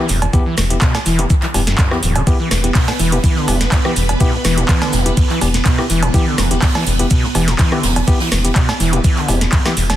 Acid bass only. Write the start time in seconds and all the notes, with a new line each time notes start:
Already playing: E3
0.09 E2
0.22 E2
0.34 E2
0.46 E3
0.58 E2
0.71 E1
0.82 B2
0.95 G2
1.06 E3
1.19 A2
1.30 E3
1.43 E3
1.54 G2
1.67 F#2
1.91 E2
2.03 E2
2.16 D3
2.27 E2
2.40 E3
2.51 E2
2.64 E1
2.75 B2
2.88 G2
3.00 E3
3.12 A2
3.24 E3
3.37 D3
3.48 E2
3.61 E2
3.72 E2
3.85 E3
3.97 E2
4.09 E1
4.21 B2
4.33 G2
4.45 E3
4.58 A2
4.69 E3
4.82 D3
4.93 E2
5.06 E2
5.17 E2
5.30 E3
5.42 E2
5.55 E1
5.66 B2
5.79 G2
5.90 E3
6.03 A2
6.14 E3
6.27 D3
6.38 E2
6.51 E2
6.62 E2
6.75 E3
6.87 E2
6.99 E1
7.11 B2
7.24 G2
7.35 E3
7.48 A2
7.59 E3
7.72 D3
7.83 E2
7.96 E2
8.08 E2
8.20 E3
8.32 E2
8.45 E1
8.56 B2
8.69 G2
8.80 E3
8.93 A2
9.04 E3
9.17 D3
9.28 E2
9.41 E2
9.52 E2
9.65 E3
9.77 E2
9.89 E1